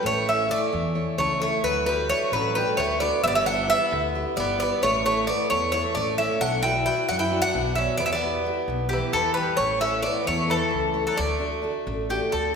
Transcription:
0.03 A1 A3 C#5
0.07 A3
0.25 E4 A4 C#5 E5
0.30 C#4
0.48 A3 E4 A4 D5 E5
0.72 E2 E3
0.95 E4 A4 C#5
1.18 C#2 A3 C#5
1.39 A3 E4 A4 C#5
1.64 D2 D3 F#3 B4
1.86 G3 D4 F#4 A4 B4
2.09 A3 D4 F#4 A4 C#5
2.32 A1 F#3 A3 B4
2.55 G3 D4 F#4 A4 B4
2.77 D2 D3 A3 C#5
3.00 B3 D4 F#4 A4 D5
3.23 G1 G3 B3 E5
3.28 B3 D5
3.35 C#4 E5
3.45 D4 E4 G4 B4 F#5
3.67 E4 G4 B4 E5
3.72 B3
3.91 D2 D3
4.15 E4 G4 B4
4.36 G1 G3 B3 D5
4.58 B3 E4 G4 B4 D5
4.82 A1 A3 C#5
5.05 A3 E4 A4 C#5
5.27 B3 E4 A4 C#5 D5
5.50 E2 E3 A3 C#5
5.72 A3 E4 A4 C#5
5.95 A1 A3 D5
6.18 C#4 E4 A4 C#5 E5
6.40 B1 B3 D4 F#5
6.62 E4 F#4 B4 D5 G5
6.86 E4 F#4 B4 D5 G5
7.09 F#2 F#3 D4 F#5
7.19 E4 G5
7.32 F#4 B4 D5
7.42 D4 F#5
7.54 B1 B3
7.75 C#4 F#4 B4 D5 E5
7.97 E2 E3 B3 D5
8.06 C#4 E5
8.13 B3 D5
8.23 E4 G4 B4
8.45 E4 G4 B4
8.68 B1 B2
8.89 E3 E4 G4 B4
9.12 E2 E3 A4
9.34 G3 E4 G4 B4
9.57 A1 A3 C#5
9.81 C#4 E4 A4 C#5 E5
10.02 B3 E4 A4 C#5 D5
10.24 E2 E3 A3 C#5
10.47 E3 E4 A4 C#5
10.51 A4
10.71 C#2 A3
10.94 E4 A4 C#5
11.07 F#3 A4
11.16 D2 D3 A3 D5
11.40 D4 F#4 A4
11.62 D4 F#4 A4
11.87 A1 A3
12.10 D4 F#4 G4 A4
12.32 D2 D3 A4

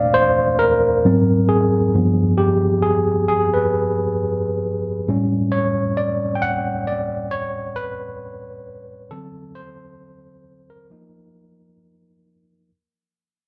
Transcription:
Already playing: A#2 A3 D4 C5 D5 F5
0.14 C5
0.59 A#4
1.05 G#2 F#3 C4
1.49 G#4
1.94 G2 F3 B3
2.38 G4
2.82 G#4
3.28 G#4
3.54 B4
5.08 A2 G3 C#4
5.52 C#5
5.97 D5
6.35 G5
6.42 F#5
6.87 D5
7.31 C#5
7.76 B4
9.11 D3 F#3 C4 A4
9.55 C5
10.70 A#4
10.90 F3 A#3 D#4

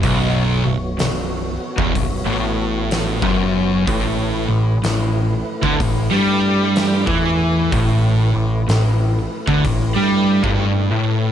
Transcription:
Already playing: B3 F#4 C#5
0.03 B0 B1, kick, open hi-hat
0.65 B0 B1
0.99 B0 B1, snare, open hi-hat
1.78 E1 E2, kick
1.95 B0 B1, kick, open hi-hat
2.26 A1 A2
2.91 snare, open hi-hat
3.22 F#1 F#2, kick
3.87 A1 A2 A3 E4 B4, kick, open hi-hat
4.50 A1 A2
4.84 A1 A2, snare, open hi-hat
5.63 D2 D3, kick
5.80 A1 A2, kick, open hi-hat
6.11 G2 G3
6.76 snare, open hi-hat
7.07 E2 E3, kick
7.72 A1 A2, kick, open hi-hat
8.34 A1 A2
8.69 A1 A2, snare, open hi-hat
9.47 D2 D3, kick
9.64 A1 A2, kick, open hi-hat
9.96 G2 G3
10.43 G1 G2, kick
10.92 A2

